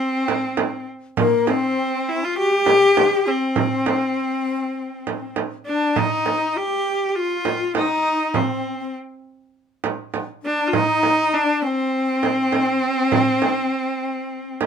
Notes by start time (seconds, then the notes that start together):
Already playing: C4
0.28 frame drum
0.57 frame drum
1.17 A#3 A#4, frame drum
1.47 C4, frame drum
2.09 E4
2.24 F4
2.38 F#4 G4
2.52 G4
2.66 frame drum
2.97 frame drum
3.27 C4
3.56 frame drum
3.86 frame drum
5.07 frame drum
5.36 frame drum
5.66 D4
5.96 D#4, frame drum
6.26 frame drum
6.57 G4
7.08 G4
7.15 F4 G4
7.20 F4
7.45 frame drum
7.75 D#4, frame drum
8.34 C4, frame drum
8.79 C4
9.84 frame drum
10.14 frame drum
10.43 D4
10.67 F4
10.73 D#4 E4, frame drum
10.77 D#4
11.03 frame drum
11.33 D4
11.62 C4 C#4
11.67 C4
12.23 frame drum
12.52 frame drum
13.12 frame drum
13.42 frame drum
14.61 frame drum